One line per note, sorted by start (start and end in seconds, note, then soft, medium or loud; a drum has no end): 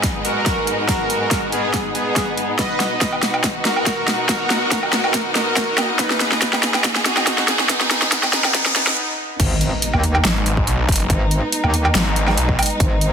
0.00 2.55 G#2 medium
0.00 2.55 G#3 medium
0.00 2.57 B3 medium
0.00 8.93 B3 medium
0.00 2.59 D#4 medium
0.00 8.93 D#4 medium
0.00 2.59 G#4 medium
0.00 2.59 D#5 medium
0.00 kick medium
0.00 snare medium
0.00 closed hi-hat medium
0.25 0.81 F#4 medium
0.25 0.80 A#4 loud
0.25 closed hi-hat medium
0.46 kick loud
0.46 snare medium
0.46 closed hi-hat medium
0.67 closed hi-hat medium
0.89 1.44 F#4 medium
0.89 1.44 A#4 loud
0.89 kick medium
0.89 snare medium
0.89 closed hi-hat medium
1.10 closed hi-hat soft
1.31 kick medium
1.31 snare medium
1.31 closed hi-hat medium
1.52 1.76 B3 medium
1.52 1.76 G#4 medium
1.52 closed hi-hat medium
1.74 kick medium
1.74 snare medium
1.74 closed hi-hat medium
1.95 2.51 B3 medium
1.95 2.51 G#4 loud
1.95 closed hi-hat medium
2.16 kick loud
2.16 snare medium
2.16 closed hi-hat medium
2.37 closed hi-hat medium
2.59 8.93 B2 medium
2.59 8.97 B3 medium
2.59 5.96 F#4 medium
2.59 3.15 B4 medium
2.59 3.15 D#5 loud
2.59 kick medium
2.59 snare medium
2.59 closed hi-hat medium
2.59 riser medium
2.80 snare medium
2.80 closed hi-hat soft
3.01 kick loud
3.01 snare medium
3.01 closed hi-hat medium
3.08 8.97 D#4 medium
3.13 low woodblock soft
3.23 snare medium
3.23 closed hi-hat soft
3.32 8.97 D#5 medium
3.32 low woodblock medium
3.44 kick medium
3.44 snare medium
3.44 closed hi-hat medium
3.57 6.47 F#4 medium
3.65 4.21 F#4 medium
3.65 4.21 A#4 loud
3.65 snare medium
3.65 closed hi-hat soft
3.76 low woodblock medium
3.86 kick medium
3.86 snare medium
3.86 closed hi-hat medium
4.08 snare medium
4.08 closed hi-hat medium
4.29 4.85 F#4 medium
4.29 4.85 A#4 loud
4.29 kick loud
4.29 snare medium
4.29 closed hi-hat medium
4.50 snare medium
4.50 closed hi-hat soft
4.71 kick loud
4.71 snare medium
4.71 closed hi-hat medium
4.83 low woodblock medium
4.93 5.16 F#4 medium
4.93 5.16 A#4 medium
4.93 snare medium
4.93 closed hi-hat medium
5.04 low woodblock medium
5.14 kick medium
5.14 snare medium
5.14 closed hi-hat medium
5.35 5.91 F#4 medium
5.35 5.91 A#4 loud
5.35 snare medium
5.35 closed hi-hat soft
5.57 kick loud
5.57 snare medium
5.57 closed hi-hat medium
5.78 snare medium
5.78 closed hi-hat medium
5.78 low woodblock medium
5.99 6.55 D#4 medium
5.99 8.94 G#4 medium
5.99 6.55 B4 loud
5.99 kick loud
5.99 snare medium
5.99 closed hi-hat medium
6.10 snare medium
6.20 snare medium
6.20 closed hi-hat medium
6.32 8.97 G#4 medium
6.32 snare medium
6.42 kick medium
6.42 snare loud
6.42 closed hi-hat medium
6.53 snare medium
6.53 low woodblock medium
6.63 snare loud
6.63 closed hi-hat medium
6.74 snare medium
6.74 low woodblock medium
6.84 kick loud
6.84 snare loud
6.84 closed hi-hat medium
6.96 snare medium
7.05 7.61 D#4 medium
7.05 7.61 F#4 loud
7.05 snare loud
7.05 closed hi-hat medium
7.17 snare medium
7.17 low woodblock medium
7.27 kick loud
7.27 snare loud
7.27 closed hi-hat medium
7.38 snare medium
7.48 snare loud
7.48 closed hi-hat medium
7.59 snare medium
7.69 8.25 B3 medium
7.69 8.25 D#4 loud
7.69 kick loud
7.69 snare loud
7.69 closed hi-hat medium
7.81 snare medium
7.91 snare loud
7.91 closed hi-hat medium
8.02 snare medium
8.12 kick loud
8.12 snare loud
8.12 closed hi-hat medium
8.23 snare medium
8.23 low woodblock medium
8.33 8.56 B3 medium
8.33 8.56 D#4 medium
8.33 snare loud
8.33 closed hi-hat medium
8.44 snare medium
8.44 low woodblock medium
8.54 kick loud
8.54 snare loud
8.54 closed hi-hat medium
8.66 snare medium
8.76 8.97 B3 medium
8.76 8.97 D#4 loud
8.76 snare loud
8.76 closed hi-hat medium
8.87 snare loud
9.40 9.70 G#1 medium
9.40 13.13 G#3 medium
9.40 13.13 B3 medium
9.40 13.13 D#4 medium
9.40 kick loud
9.40 closed hi-hat medium
9.40 crash loud
9.40 impact medium
9.61 closed hi-hat medium
9.82 closed hi-hat medium
9.93 10.23 D#2 loud
9.93 low woodblock medium
10.04 closed hi-hat medium
10.15 low woodblock medium
10.25 10.66 G#1 medium
10.25 snare loud
10.25 closed hi-hat medium
10.46 closed hi-hat medium
10.57 kick medium
10.67 10.87 B1 loud
10.67 closed hi-hat medium
10.89 11.08 F#1 loud
10.89 kick loud
10.89 closed hi-hat medium
10.92 closed hi-hat medium
10.96 closed hi-hat medium
11.00 closed hi-hat soft
11.10 11.41 G#1 loud
11.10 kick loud
11.10 closed hi-hat medium
11.31 closed hi-hat medium
11.52 closed hi-hat medium
11.64 11.93 D#2 loud
11.64 low woodblock medium
11.74 closed hi-hat medium
11.85 low woodblock medium
11.95 12.36 G#1 medium
11.95 snare loud
11.95 closed hi-hat medium
12.16 closed hi-hat medium
12.28 snare soft
12.28 low woodblock medium
12.37 12.57 B1 loud
12.37 closed hi-hat medium
12.49 kick medium
12.59 closed hi-hat medium
12.59 low woodblock medium
12.63 closed hi-hat medium
12.66 closed hi-hat medium
12.70 closed hi-hat soft
12.80 13.11 G#1 loud
12.80 kick loud
12.80 closed hi-hat medium
13.01 closed hi-hat medium